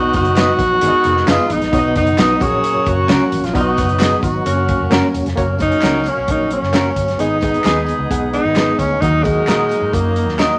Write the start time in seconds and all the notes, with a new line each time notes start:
Already playing: B2 F#3 B3 D#4 F#4 B4 D#5
0.13 F#1 F#4, kick, closed hi-hat, tambourine
0.25 closed hi-hat
0.35 B3 D#4 F#4 B4 D#5, snare, clap, closed hi-hat, tambourine
0.59 A#1, kick, closed hi-hat, tambourine
0.81 G#1 G#2 G#3 B3 D#4 G#4 A#4 D5, closed hi-hat, tambourine
0.89 D#5
0.94 muted fingered electric bass stroke
1.04 F1, closed hi-hat, tambourine
1.17 snare
1.26 F#1 B3 D#4 F4 G#4 B4 D#5, snare, clap, closed hi-hat, tambourine
1.50 A1 D#4, closed hi-hat, tambourine
1.62 A#1, snare, closed hi-hat
1.72 B1 B2 F#3 B3 D#4 F#4 B4 C#5, kick, closed hi-hat, tambourine
1.79 D#5
1.96 F#1 D#4, kick, closed hi-hat, tambourine
2.07 closed hi-hat
2.18 B1 B3 D#4 F#4 B4 D#5, snare, clap, closed hi-hat, tambourine
2.39 A#1 A#2 A#3 C#4 F#4 G#4 A#4 C#5, kick, closed hi-hat, tambourine
2.63 closed hi-hat, tambourine
2.75 muted fingered electric bass stroke
2.86 F#1 F#4, kick, closed hi-hat, tambourine
3.08 C#2 A#3 C#4 F#4 A#4 C#5, snare, clap, closed hi-hat, tambourine
3.32 A1, closed hi-hat, tambourine
3.43 A#1 F4, snare, closed hi-hat
3.53 B1 B2 F#3 B3 D#4 F#4 B4 D5, kick, closed hi-hat, tambourine
3.61 D#5
3.77 F#1, kick, closed hi-hat, tambourine
3.89 closed hi-hat
3.99 B3 D#4 F#4 G#4 B4 D#5, snare, clap, closed hi-hat, tambourine
4.22 G#1 F#4, kick, closed hi-hat, tambourine
4.46 F#1 A#3 C#4 F#4 A#4 C#5, closed hi-hat, tambourine
4.68 kick, closed hi-hat, tambourine
4.80 F1
4.90 F#1 A#3 C#4 F#4 A#4 C#5, snare, clap, closed hi-hat, tambourine
5.14 E1, closed hi-hat, tambourine
5.26 F1, snare, closed hi-hat
5.36 F#1 F#3 A#3 C#4 F#4 C#5, kick, closed hi-hat, tambourine
5.59 A#3 D#4 F#4 C#5, kick, closed hi-hat, tambourine
5.72 closed hi-hat
5.81 C#2 A#3 C#4 F#4 A#4 C#5, snare, clap, closed hi-hat, tambourine
6.04 closed hi-hat, tambourine
6.08 C#4
6.17 B1
6.28 A#1 G#3 D#4 F#4 C#5, kick, closed hi-hat
6.34 A#3
6.51 C#4, closed hi-hat
6.62 F#1, snare
6.73 A#3 C#4 F#4 A#4 B4, snare, clap, closed hi-hat, tambourine
6.81 C#5
6.96 G1, kick, closed hi-hat, tambourine
7.08 snare, closed hi-hat
7.19 G#1 G#2 G#3 B3 D#4 G#4 B4 D#5, closed hi-hat, tambourine
7.41 B3 G#4 D#5, kick, closed hi-hat, tambourine
7.54 closed hi-hat
7.64 D#2 B3 G#4 B4 D#5, snare, clap, closed hi-hat, tambourine
7.86 closed hi-hat, tambourine
7.99 C#2
8.10 B1 B3 G#4 F#5, kick, closed hi-hat
8.33 D#4, closed hi-hat
8.45 G#1
8.56 B3 G#4 B4 D#5, snare, clap, closed hi-hat, tambourine
8.79 D2 C#4, kick, closed hi-hat, tambourine
9.01 D#2 D#3 F#3 A#3 D#4 F#4 A#4 D#5, kick, closed hi-hat, tambourine
9.23 G#3 A#3 F#4 D#5, kick, closed hi-hat, tambourine
9.47 A#2 A#3 F#4 A#4 D#5, snare, clap, closed hi-hat, tambourine
9.69 closed hi-hat, tambourine
9.82 G#2
9.93 F#2 A#3 F#4 D#5, kick, closed hi-hat, tambourine
10.16 closed hi-hat
10.27 D#2, snare
10.39 A#3 F#4 A#4 C#5 D#5, snare, clap, closed hi-hat, tambourine